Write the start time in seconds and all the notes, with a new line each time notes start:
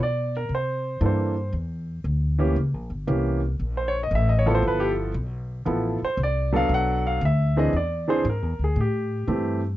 Already playing: B2
0.03 D5
0.37 A#4
0.49 C3
0.55 C5
1.01 G2 E3 A#3 D4 A4
1.06 C5
1.53 E2
2.04 D2
2.38 E3 A#3 C#4 G4
2.56 C#2
2.74 A#1
2.90 G1
3.07 C2 E3 A#3 C#4 G4
3.59 A#1
3.77 C5
3.88 C#5
4.03 D#5
4.11 A1
4.15 E5
4.29 D#5
4.39 C#5
4.46 F3 B3 E4 A4
4.55 C5
4.62 G1
4.68 B4
4.80 G4
5.14 B1
5.66 A1 F3 B3 E4 A4
6.02 C5, muted upright bass stroke
6.17 C2
6.23 D5
6.52 F#3 B3 D4 A4 F5
6.69 B1
6.74 F#5
7.07 F5
7.21 D2
7.25 E5
7.56 E3 C4 D4 G#4 D#5
7.73 E2 D5
8.08 E3 C4 D4 G#4 C5
8.25 G#2
8.29 A#4
8.42 E2
8.59 D2
8.64 G#4
8.76 A2
8.81 G4
9.27 G2 E3 A3 C4 G4